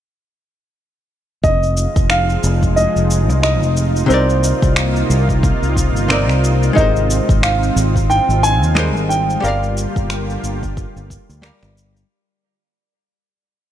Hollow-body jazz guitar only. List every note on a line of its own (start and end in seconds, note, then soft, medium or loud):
4.06 6.05 C3 medium
4.06 6.06 C4 medium
4.06 6.07 D#4 medium
4.12 6.08 A#4 medium
4.12 6.08 D5 medium
6.08 6.73 C3 medium
6.08 6.73 C4 medium
6.08 6.73 D#4 medium
6.08 6.74 A#4 medium
6.08 6.74 D5 medium
6.73 8.72 G#3 medium
6.73 8.72 D#4 medium
6.73 8.73 G4 medium
6.79 8.74 A#4 medium
6.79 8.75 C5 medium
8.75 9.39 G3 medium
8.75 9.39 G#3 medium
8.75 9.40 D#4 medium
8.75 9.41 A#4 medium
8.75 9.41 C5 medium
9.40 11.38 G3 medium
9.40 11.39 G4 medium
9.44 11.41 A#4 medium
9.44 11.41 D5 medium
9.44 11.42 F5 medium
11.42 12.06 G3 medium
11.42 12.06 G4 medium
11.42 12.07 A#4 medium
11.42 12.07 D5 medium
11.42 12.08 F5 medium